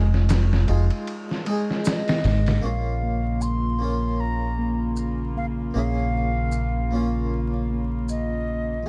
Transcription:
Already playing: F1 G#3 D#4 G#4
0.14 snare
0.29 snare, ride, maracas
0.53 snare
0.68 F1 G#3 D#4 F4, ride
0.90 ride
1.07 ride
1.31 snare
1.45 G#3 D#4 G#4, ride
1.70 snare
1.85 D#5, snare, open hi-hat, maracas
2.08 snare, open hi-hat
2.24 G#1 G#3, snare, open hi-hat
2.46 snare, open hi-hat
2.61 A#1 C#3 A#3 C#4 F4 F5
3.02 A#3
3.41 C6, maracas
3.79 A#3 C#4 F4
4.20 A#5
4.58 A#3
4.97 maracas
5.36 A#3 F5
5.74 A#1 A#3 C#4 G#4 F5
6.14 F4
6.52 maracas
6.91 A#3 C#4 F4
7.70 A#3
8.09 D#5, maracas
8.47 F4

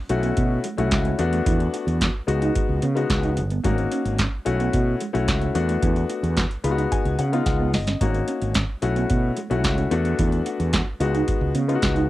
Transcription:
0.09 B1 A3 C#4 E4 F#4, muted clean electric guitar stroke, closed hi-hat
0.23 B3, closed hi-hat
0.37 B2, muted clean electric guitar stroke, kick, closed hi-hat
0.64 G#3, closed hi-hat
0.77 B1 A3 C#4 E4 F#4, closed hi-hat
0.91 C#2, kick, snare, clap, closed hi-hat
1.05 C#4, closed hi-hat
1.18 E2 A3 B3 D4 F#4, closed hi-hat
1.33 A3, closed hi-hat
1.46 E2 E4, kick, closed hi-hat
1.60 muted clean electric guitar stroke, closed hi-hat
1.74 F#4, closed hi-hat
1.87 E2, closed hi-hat
2.01 F#4, kick, snare, clap, closed hi-hat
2.27 C#2 G#3 B3 D#4 F#4, muted clean electric guitar stroke, closed hi-hat
2.42 D#4, closed hi-hat
2.55 muted clean electric guitar stroke, kick, closed hi-hat
2.69 C#2
2.82 C#3 B3, closed hi-hat
2.95 G#3 B3 C#4 D#4 F#4, closed hi-hat
3.10 C#2, kick, snare, clap, closed hi-hat
3.23 D#4, closed hi-hat
3.37 G1, muted clean electric guitar stroke, closed hi-hat
3.50 B3, closed hi-hat
3.64 G#1 G#3 A#3 C#4 D#4 F#4, kick, closed hi-hat
3.78 muted clean electric guitar stroke, closed hi-hat
3.92 C#4, closed hi-hat
4.05 G#1, closed hi-hat
4.18 C#4, kick, snare, clap, closed hi-hat
4.45 B1 A3 C#4 E4 F#4, muted clean electric guitar stroke, closed hi-hat
4.60 B3, closed hi-hat
4.73 B2, muted clean electric guitar stroke, kick, closed hi-hat
5.01 G#3, closed hi-hat
5.13 B1 A3 C#4 E4 F#4, closed hi-hat
5.28 C#2, kick, snare, clap, closed hi-hat
5.41 C#4, closed hi-hat
5.55 E2 A3 B3 D4 F#4, closed hi-hat
5.69 A3, closed hi-hat
5.82 E2 E4, kick, closed hi-hat
5.96 muted clean electric guitar stroke, closed hi-hat
6.10 F#4, closed hi-hat
6.23 E2, closed hi-hat
6.37 F#4, kick, snare, clap, closed hi-hat
6.51 closed hi-hat
6.64 C#2 G#3 B3 D#4 F4 B5, muted clean electric guitar stroke, closed hi-hat
6.71 F#4
6.78 D#4, closed hi-hat
6.91 G#5, muted clean electric guitar stroke, kick, closed hi-hat
7.05 C#2, closed hi-hat
7.19 C#3 C#4 F#5, closed hi-hat
7.32 G#3 B3 D#4 F4, closed hi-hat
7.46 C#2 F#5, kick, snare, closed hi-hat
7.60 B3
7.73 G1 D#5, muted clean electric guitar stroke, snare, open hi-hat
7.87 C#4, snare, closed hi-hat
8.01 G#1 G#3 A#3 C#4 D#4 F#4, kick, closed hi-hat
8.14 muted clean electric guitar stroke, closed hi-hat
8.28 C#4, closed hi-hat
8.42 G#1, closed hi-hat
8.54 C#4, kick, snare, clap, closed hi-hat
8.82 B1 A3 C#4 E4 F#4, closed hi-hat
8.96 B3, closed hi-hat
9.10 B2, muted clean electric guitar stroke, kick, closed hi-hat
9.37 G#3, closed hi-hat
9.50 B1 A3 C#4 E4 F#4, closed hi-hat
9.64 C#2, kick, snare, clap, closed hi-hat
9.78 C#4, closed hi-hat
9.91 E2 A3 B3 D4 F#4, closed hi-hat
10.05 A3, closed hi-hat
10.19 E2 E4, kick, closed hi-hat
10.32 muted clean electric guitar stroke, closed hi-hat
10.46 F#4, closed hi-hat
10.60 E2, closed hi-hat
10.73 F#4, kick, snare, clap, closed hi-hat
11.00 C#2 G#3 B3 D#4 F#4, muted clean electric guitar stroke, closed hi-hat
11.14 D#4, closed hi-hat
11.28 kick, closed hi-hat
11.41 C#2
11.55 C#3 B3, closed hi-hat
11.68 G#3 B3 C#4 D#4 F4, closed hi-hat
11.75 F#4
11.82 C#2, kick, snare, clap, closed hi-hat
11.95 D#4, closed hi-hat

